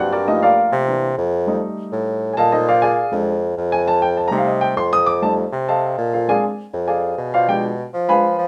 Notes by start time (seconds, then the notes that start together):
Already playing: G2 F#3 A#3 C4 F#5
0.00 F#4 C5 D5
0.12 D4 F#4 A#4 D5
0.27 F3 A3 A#3 D#4 D#5
0.42 F4 A#4 D5 F5
0.72 C3
0.88 E3 A#3 D4
1.17 F2
1.47 G3 A3 D#4
1.92 A2
2.33 A#2 G#5 A5
2.38 A4 D#5 F5
2.52 D#4 A4 C5 D#5
2.68 F4 C5 D5 F5
2.82 G#4 D5 F5 G#5
3.12 F2 G#3 C4 D4
3.57 F2
3.72 G#5
3.88 A5
4.02 G5
4.17 A5
4.28 C3 G3 A3 A#5
4.32 D#4
4.37 F5
4.47 D#5
4.61 G5
4.76 F2 C6
4.93 D#6
5.06 D6
5.22 G3 A3 D#4 A5
5.52 C3
5.68 A4 D#5 F5 A5
5.98 A#2
6.13 F4 A4 C5 F5
6.28 G#3 C4 D4 G#4 D5 F5 G#5
6.73 F2
6.88 G#4 D5 F5 G#5
7.18 B2
7.34 F4 C5 D5 F5
7.48 F3 G#3 D4 G4 G5
7.93 F3
8.08 F3 G#3 D4 B4 F5 G#5 B5
8.38 F3